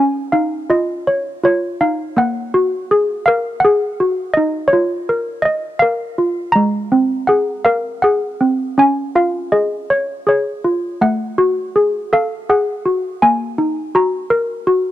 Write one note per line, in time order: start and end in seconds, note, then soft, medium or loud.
0.00 1.44 C#4 medium
0.00 0.11 G#5 medium
0.32 1.80 D#4 medium
0.32 0.70 F5 medium
0.70 1.42 F4 medium
0.70 1.46 D#5 medium
1.07 1.44 C#5 medium
1.44 2.17 F4 medium
1.44 1.82 C#5 medium
1.81 2.17 D#4 medium
1.81 2.18 F5 medium
2.17 3.62 A#3 medium
2.17 3.23 F#5 medium
2.54 3.99 F#4 medium
2.91 3.63 G#4 medium
3.26 4.36 A#4 medium
3.26 3.63 F5 medium
3.60 4.36 F#5 medium
3.65 4.36 G#4 medium
4.00 4.36 F#4 medium
4.34 5.82 D#4 medium
4.34 4.72 D#5 medium
4.68 5.45 C#5 medium
4.73 6.17 F4 medium
5.09 5.81 A#4 medium
5.42 5.44 D#5 medium
5.42 6.55 D#5 medium
5.79 6.55 A#4 medium
5.79 6.49 F5 medium
6.18 6.54 F4 medium
6.52 8.04 G#3 medium
6.52 7.29 A#5 medium
6.92 8.39 C4 medium
7.27 8.03 G#4 medium
7.27 7.66 F#5 medium
7.65 8.78 A#4 medium
7.65 8.00 F5 medium
8.02 8.78 G#4 medium
8.02 8.79 F#5 medium
8.41 8.78 C4 medium
8.78 10.26 C#4 medium
8.78 9.17 G#5 medium
9.15 10.63 F4 medium
9.15 9.54 F5 medium
9.52 10.26 G#4 medium
9.52 10.28 D#5 medium
9.90 10.27 C#5 medium
10.27 11.01 G#4 medium
10.27 11.04 C#5 medium
10.64 11.01 F4 medium
11.01 12.49 A3 medium
11.01 12.08 F#5 medium
11.38 12.84 F#4 medium
11.76 12.48 G#4 medium
12.13 13.22 A4 medium
12.13 12.50 F5 medium
12.50 13.22 G#4 medium
12.50 13.24 F#5 medium
12.86 13.22 F#4 medium
13.22 14.67 A#3 medium
13.22 13.90 G#5 medium
13.58 14.92 D#4 medium
13.95 14.66 F#4 medium
13.95 14.92 A#5 medium
14.30 14.92 A#4 medium
14.67 14.92 F#4 medium